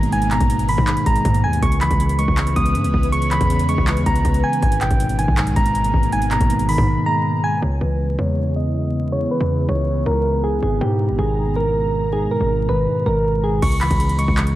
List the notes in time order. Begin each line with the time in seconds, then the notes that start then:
Already playing: G#1 G#2 B2 D#3 G#3 A#3 B3
0.03 closed hi-hat
0.12 G#2 G#5, closed hi-hat
0.22 closed hi-hat
0.31 B2 A#5, clap, closed hi-hat
0.40 G#1, kick, closed hi-hat
0.49 G#2, closed hi-hat
0.59 closed hi-hat
0.69 D#3 B5, open hi-hat
0.78 G#2, kick
0.87 G#2, clap, closed hi-hat
0.97 closed hi-hat
1.06 G#1 G#3 A#5, kick, closed hi-hat
1.16 closed hi-hat
1.25 G#2, kick, closed hi-hat
1.34 closed hi-hat
1.44 D#2 G#5
1.53 closed hi-hat
1.62 C#2 C#3 E3 C#4 B4 C#6, kick, closed hi-hat
1.72 closed hi-hat
1.81 E3 B5, clap, closed hi-hat
1.91 C#2, kick, closed hi-hat
2.00 C#3, closed hi-hat
2.09 closed hi-hat
2.18 G#3 C#6, closed hi-hat
2.28 C#2, kick
2.37 C#3, clap, closed hi-hat
2.47 closed hi-hat
2.56 C#2 B3 D#6, kick, closed hi-hat
2.66 closed hi-hat
2.75 G#2, closed hi-hat
2.84 C#2, closed hi-hat
2.94 C#2, kick
3.03 closed hi-hat
3.12 C#3 C#6, closed hi-hat
3.22 closed hi-hat
3.31 E3 B5, clap, closed hi-hat
3.41 E2, kick, closed hi-hat
3.50 C#3, closed hi-hat
3.59 closed hi-hat
3.69 G#3 C#6, closed hi-hat
3.78 C#2, kick
3.87 C#3, clap, closed hi-hat
3.97 E2, closed hi-hat
4.06 C#2 B3 A#5, kick, closed hi-hat
4.16 closed hi-hat
4.25 C#2, kick, closed hi-hat
4.34 closed hi-hat
4.44 G#5
4.53 closed hi-hat
4.62 G#1 G#2 G#3 A#3 B3 G#5, kick, closed hi-hat
4.72 closed hi-hat
4.81 B2 G5, clap, closed hi-hat
4.91 G#1, kick, closed hi-hat
5.00 G#2, closed hi-hat
5.09 closed hi-hat
5.19 D#3 G#5, closed hi-hat
5.28 B1, kick
5.37 G#2, clap, closed hi-hat
5.47 closed hi-hat
5.56 G#1 G#3 A#5, kick, closed hi-hat
5.66 closed hi-hat
5.75 closed hi-hat
5.84 closed hi-hat
5.94 G#1, kick
6.03 closed hi-hat
6.12 G#2 G#5, closed hi-hat
6.22 closed hi-hat
6.31 B2 A#5, clap, closed hi-hat
6.41 G#1, kick, closed hi-hat
6.50 G#2, closed hi-hat
6.59 closed hi-hat
6.69 D#3 B5, open hi-hat
6.78 G#2, kick
6.87 G#2
7.06 G#3 A#5
7.44 G#5
7.62 C#2 C#3 B3 E4 C#5
7.81 C#2 E3 B4
8.00 C#3
8.18 E2 G#3 C#5
8.38 C#3
8.56 B3 D#5
9.12 C#3 C#5
9.31 E3 B4
9.41 E2
9.50 C#3
9.69 C#2 G#3 C#5
9.87 C#3
10.06 C#2 B3 A#4
10.44 G#4
10.62 G#1 G#2 G#3 G#4 A#5
10.81 G#2 B2 G4
11.00 G#2
11.09 G1
11.19 G#1 D#3 G#4
11.38 G#2
11.56 G#3 A#4
12.13 G#2 G#4
12.31 B2 A#4
12.41 G#1
12.50 G#2
12.69 G#1 D#3 B4
12.87 G#2
13.06 G#1 G#3 A#4
13.44 G#4
13.62 C#2 C#3 C#6, kick, closed hi-hat, crash
13.72 closed hi-hat
13.81 E3 B5, clap, closed hi-hat
13.91 C#2, kick, closed hi-hat
14.00 C#3, closed hi-hat
14.09 closed hi-hat
14.18 G#3 C#6, closed hi-hat
14.28 C#2, kick
14.37 C#3, clap, closed hi-hat
14.47 closed hi-hat